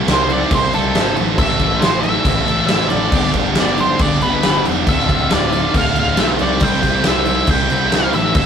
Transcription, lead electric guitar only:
0, 0, Header, 1, 2, 480
1, 0, Start_track
1, 0, Tempo, 435730
1, 1527, Time_signature, 4, 2, 24, 8
1, 9318, End_track
2, 0, Start_track
2, 0, Title_t, "Lead electric guitar"
2, 0, Program_c, 0, 29
2, 144, Note_on_c, 0, 72, 105
2, 341, Note_off_c, 0, 72, 0
2, 356, Note_on_c, 0, 74, 115
2, 589, Note_off_c, 0, 74, 0
2, 599, Note_on_c, 0, 72, 109
2, 817, Note_off_c, 0, 72, 0
2, 821, Note_on_c, 0, 69, 81
2, 1261, Note_off_c, 0, 69, 0
2, 1529, Note_on_c, 0, 76, 115
2, 1977, Note_on_c, 0, 72, 86
2, 2022, Note_off_c, 0, 76, 0
2, 2202, Note_on_c, 0, 76, 120
2, 2214, Note_off_c, 0, 72, 0
2, 2927, Note_off_c, 0, 76, 0
2, 2940, Note_on_c, 0, 76, 106
2, 3180, Note_off_c, 0, 76, 0
2, 3184, Note_on_c, 0, 74, 89
2, 3641, Note_off_c, 0, 74, 0
2, 3969, Note_on_c, 0, 74, 109
2, 4172, Note_off_c, 0, 74, 0
2, 4190, Note_on_c, 0, 72, 96
2, 4402, Note_off_c, 0, 72, 0
2, 4422, Note_on_c, 0, 74, 104
2, 4638, Note_off_c, 0, 74, 0
2, 4653, Note_on_c, 0, 71, 83
2, 5097, Note_off_c, 0, 71, 0
2, 5383, Note_on_c, 0, 76, 103
2, 5870, Note_off_c, 0, 76, 0
2, 5875, Note_on_c, 0, 74, 100
2, 6356, Note_off_c, 0, 74, 0
2, 6363, Note_on_c, 0, 77, 112
2, 6593, Note_off_c, 0, 77, 0
2, 6605, Note_on_c, 0, 77, 100
2, 6811, Note_off_c, 0, 77, 0
2, 6835, Note_on_c, 0, 76, 102
2, 6897, Note_off_c, 0, 76, 0
2, 7073, Note_on_c, 0, 74, 99
2, 7299, Note_on_c, 0, 79, 109
2, 7308, Note_off_c, 0, 74, 0
2, 7742, Note_off_c, 0, 79, 0
2, 7801, Note_on_c, 0, 76, 98
2, 8233, Note_off_c, 0, 76, 0
2, 8269, Note_on_c, 0, 79, 115
2, 8754, Note_off_c, 0, 79, 0
2, 8764, Note_on_c, 0, 77, 100
2, 8970, Note_off_c, 0, 77, 0
2, 8974, Note_on_c, 0, 76, 100
2, 9189, Note_off_c, 0, 76, 0
2, 9202, Note_on_c, 0, 76, 100
2, 9318, Note_off_c, 0, 76, 0
2, 9318, End_track
0, 0, End_of_file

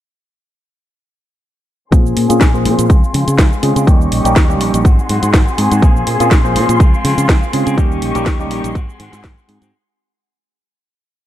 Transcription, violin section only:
0, 0, Header, 1, 2, 480
1, 0, Start_track
1, 0, Key_signature, -5, "minor"
1, 0, Tempo, 487805
1, 1894, Time_signature, 4, 2, 24, 8
1, 11089, End_track
2, 0, Start_track
2, 0, Title_t, "Violin section"
2, 0, Program_c, 0, 48
2, 1890, Note_on_c, 0, 68, 71
2, 1891, Note_on_c, 0, 84, 78
2, 2843, Note_off_c, 0, 68, 0
2, 2852, Note_on_c, 0, 65, 69
2, 3793, Note_off_c, 0, 84, 0
2, 3803, Note_off_c, 0, 65, 0
2, 3813, Note_on_c, 0, 67, 72
2, 3813, Note_on_c, 0, 75, 66
2, 3813, Note_on_c, 0, 85, 77
2, 4764, Note_off_c, 0, 67, 0
2, 4764, Note_off_c, 0, 75, 0
2, 4764, Note_off_c, 0, 85, 0
2, 4765, Note_on_c, 0, 78, 66
2, 4766, Note_on_c, 0, 68, 76
2, 4766, Note_on_c, 0, 84, 80
2, 5720, Note_off_c, 0, 78, 0
2, 5720, Note_off_c, 0, 84, 0
2, 5731, Note_on_c, 0, 84, 85
2, 6671, Note_off_c, 0, 68, 0
2, 6696, Note_on_c, 0, 65, 73
2, 7633, Note_off_c, 0, 84, 0
2, 7646, Note_off_c, 0, 65, 0
2, 7657, Note_on_c, 0, 67, 74
2, 7658, Note_on_c, 0, 75, 67
2, 7659, Note_on_c, 0, 85, 81
2, 8606, Note_off_c, 0, 67, 0
2, 8607, Note_off_c, 0, 75, 0
2, 8607, Note_off_c, 0, 85, 0
2, 8612, Note_on_c, 0, 78, 68
2, 8614, Note_on_c, 0, 84, 81
2, 8615, Note_on_c, 0, 68, 75
2, 9563, Note_off_c, 0, 78, 0
2, 9564, Note_off_c, 0, 84, 0
2, 9565, Note_off_c, 0, 68, 0
2, 11089, End_track
0, 0, End_of_file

